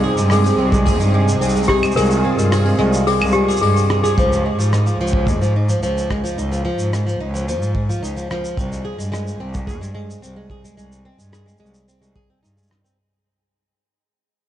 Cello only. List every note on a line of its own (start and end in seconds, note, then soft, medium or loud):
0.00 0.14 C2 medium
0.17 0.55 G2 medium
0.59 1.01 C2 loud
1.00 1.37 G2 loud
1.41 1.79 C2 medium
1.96 2.34 C2 loud
2.38 2.75 G2 medium
2.79 2.90 C2 loud
3.20 3.58 C2 loud
3.61 3.99 G2 medium
4.18 4.54 C#2 medium
4.58 4.95 G#2 medium
4.99 5.42 C#2 medium
5.41 5.78 G#2 medium
5.82 6.19 C#2 medium
6.38 6.74 C#2 medium
6.78 7.15 G#2 medium
7.20 7.62 C#2 loud
7.61 7.98 G#2 medium
8.02 8.39 C#2 medium
8.57 8.94 C2 medium
8.98 9.36 G2 medium
9.40 9.83 C2 loud
9.81 10.18 G2 medium
10.23 10.60 C2 medium
10.77 11.14 C2 medium
11.19 11.56 G2 medium
11.61 11.71 C2 medium
12.02 12.13 C2 medium
12.43 12.80 G2 medium